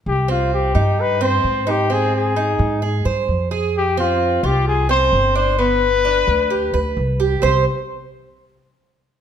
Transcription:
X:1
M:4/4
L:1/8
Q:1/4=130
K:Cm
V:1 name="Trumpet"
G F G2 =B c2 G | A A4 z3 | G F2 G A c2 c | =B6 z2 |
c z6 z |]
V:2 name="Cuban tres"
z C2 E2 C2 E | C2 E2 A c2 A- | A C2 F2 C2 D | =B,2 D2 G =B2 G |
[CGc] z6 z |]
V:3 name="Upright bass" clef=bass
C,,3 G,,3 A,,2- | A,,3 A,,2 G,, F,,2- | F,,3 C,,3 G,,,2- | G,,,3 D,,2 D,, C,,2 |
C,, z6 z |]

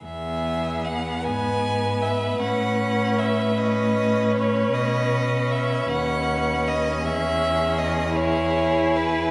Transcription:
X:1
M:6/8
L:1/8
Q:3/8=51
K:E
V:1 name="Violin"
e2 f g2 e | f2 e d2 c | d2 e f2 d | e2 d c2 B |]
V:2 name="Violin"
G3 B3- | B6- | B6 | G3 G3 |]
V:3 name="Viola"
B,6 | C3 C3- | C6- | C3 E3 |]
V:4 name="Cello" clef=bass
E,,3 G,,3 | A,,6 | B,,3 D,,3 | E,,6 |]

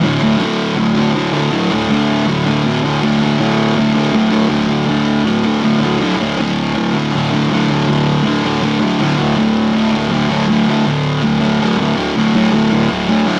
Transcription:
X:1
M:4/4
L:1/8
Q:1/4=161
K:Clyd
V:1 name="Distorted electric guitar" clef=bass
[D,,A,,D,] [A,,D,] [D,,A,,D,]2 [D,,A,,D,] [A,,D,] [D,,A,,D,] [A,,D,] | [D,,A,,D,] [A,,D,] [D,,A,,D,]2 [D,,A,,D,] [A,,D,] [D,,A,,D,] [A,,D,] | [D,,A,,D,] [A,,D,] [D,,A,,D,]2 [D,,A,,D,] [A,,D,] [D,,A,,D,] [A,,D,] | [D,,A,,D,] [A,,D,] [D,,A,,D,]2 [D,,A,,D,] [A,,D,] [D,,A,,D,] [A,,D,] |
[D,,A,,D,] [A,,D,] [D,,A,,D,]2 [D,,A,,D,] [A,,D,] [D,,A,,D,] [A,,D,] | [D,,A,,D,] [A,,D,] [D,,A,,D,]2 [D,,A,,D,] [A,,D,] [D,,A,,D,] [A,,D,] | [D,,A,,D,] [A,,D,] [D,,A,,D,]2 [D,,A,,D,] [A,,D,] [D,,A,,D,] [A,,D,] | [D,,A,,D,] [A,,D,] [D,,A,,D,]2 [D,,A,,D,] [A,,D,] [D,,A,,D,] [A,,D,] |
[D,,A,,D,] [D,,A,,D,] [D,,A,,D,] [D,,A,,D,] [D,,A,,D,] [D,,A,,D,] [D,,A,,D,] [D,,A,,D,] |]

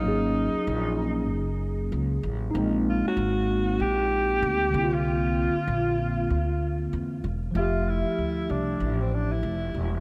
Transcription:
X:1
M:4/4
L:1/16
Q:"Swing 16ths" 1/4=96
K:Cmix
V:1 name="Alto saxophone"
_E8- E2 z6 | z2 F _G4- G =G6- G F- | F12 z4 | F2 E4 D3 C D E4 z |]
V:2 name="Tine electric piano"
[_G,B,_D_A]16 | [_A,B,C_E]12- [A,B,CE]2 [D,B,C=EF]2- | [D,B,CEF]12- [D,B,CEF]2 z2 | [F,A,Ge]16 |]
V:3 name="Upright bass" clef=bass
_A,,,3 z B,,,4 _G,,,4 _D,,2 =A,,,2 | B,,,3 z _A,,,4 B,,,4 D,,2 C,,2- | C,,3 z B,,,4 D,,4 E,,2 E,,,2 | F,,,3 z D,,2 C,,2 A,,,4 F,,,2 E,,,2 |]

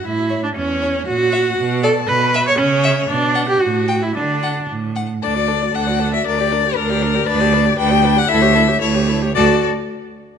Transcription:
X:1
M:2/4
L:1/16
Q:1/4=117
K:D
V:1 name="Violin"
e3 d c4 | f6 a2 | b3 c' c4 | d3 g f3 e |
d4 z4 | d4 f3 e | d4 _B4 | d4 g3 f |
e4 c4 | d2 z6 |]
V:2 name="Violin"
z2 c z3 c z | z2 e z3 d z | z2 e z3 e z | z2 f z3 g z |
z2 f z3 f z | A d A d A d A d | _B d B d B d B d | B d B d B d B d |
A c A c A c A c | A2 z6 |]
V:3 name="Viola"
E3 D C4 | F6 A2 | B3 c C4 | D3 G F3 E |
D4 z4 | D F D F D F D F | D G D G D G D G | D G D G D G D G |
E G E G E G E G | F2 z6 |]
V:4 name="Cello" clef=bass
A,,4 E,,4 | ^A,,4 B,,4 | B,,4 C,4 | B,,4 A,,4 |
D,4 A,,4 | D,,4 D,,4 | D,,4 D,,4 | D,,4 D,,4 |
D,,4 D,,4 | D,,2 z6 |]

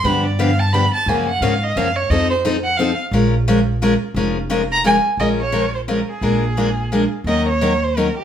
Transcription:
X:1
M:3/4
L:1/16
Q:"Swing" 1/4=175
K:Bbm
V:1 name="Violin"
=b2 =d2 f2 =a2 b2 a2 | a2 g2 f2 e2 f2 d2 | e2 c2 z2 g2 f2 z2 | z12 |
z6 b2 a2 z2 | e2 d4 c2 B2 A2- | A8- A2 z2 | e2 d4 c2 B2 =G2 |]
V:2 name="Steel-string acoustic guitar"
[=D,F,=B,=D=G]2 z2 [D,F,B,DG] z3 [D,F,B,DG] z3 | [D,F,B,DG]2 z2 [D,F,B,DG] z3 [D,F,B,DG] z3 | [F,CE=A]2 z2 [F,CEA] z3 [F,CEA] z3 | [F,A,DFB]2 z2 [F,A,DFB] z3 [F,A,DFB] z3 |
[F,A,DFB]2 z2 [F,A,DFB] z3 [F,A,DFB] z3 | [F,A,DFB]2 z2 [F,A,DFB] z3 [F,A,DFB] z3 | [F,A,=DFB]2 z2 [F,A,DFB] z3 [F,A,DFB] z3 | [E,G,DEB]2 z2 [E,G,DEB] z3 [E,G,DEB] z3 |]
V:3 name="Upright bass" clef=bass
=G,,12 | G,,4 A,,4 G,,4 | F,,12 | B,,,12 |
F,,,12 | B,,,12 | B,,,12 | E,,12 |]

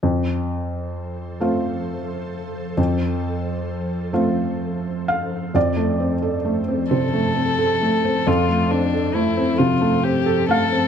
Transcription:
X:1
M:6/8
L:1/16
Q:3/8=44
K:Flyd
V:1 name="Ambient pad"
[F,Ac]12- | [F,Ac]12 | [F,Ac]12- | [F,Ac]12 |]
V:2 name="Violin"
z12 | z12 | z6 A6 | F2 D2 E2 F2 G2 A2 |]
V:3 name="Felt piano"
z12 | z8 z2 f2 | d6 c6 | A8 z2 f2 |]
V:4 name="Felt piano"
F,,6 [A,CF]6 | F,,6 [A,CF]6 | F,, A, C A A, C C, A, C A A, C | F,, A, C A A, C C, A, C A A, C |]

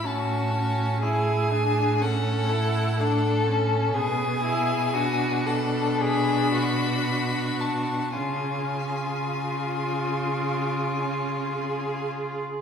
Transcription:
X:1
M:4/4
L:1/8
Q:1/4=57
K:F#m
V:1 name="Violin"
a2 g2 f3 z | [K:C#phr] g3 f b3 a | g6- g z |]
V:2 name="Violin"
F2 G2 A2 A2 | [K:C#phr] G2 F A G F3 | ^E8 |]
V:3 name="Viola"
C C E D C E D C | [K:C#phr] B, E D6 | C2 ^E3 C G2 |]
V:4 name="Cello" clef=bass
A,,8 | [K:C#phr] B,,8 | C,8 |]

